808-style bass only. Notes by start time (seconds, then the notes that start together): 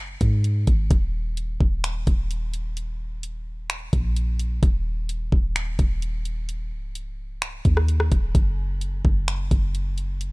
Already playing: F#1
0.21 G#2
0.67 G#1
0.91 D#1
1.60 D#1
2.07 D#1
3.93 A#1
4.63 D#1
5.32 D#1
5.79 D#1
6.72 C#1
7.65 D#2
8.12 D#1
8.35 F#1
9.05 F#1
9.51 F#1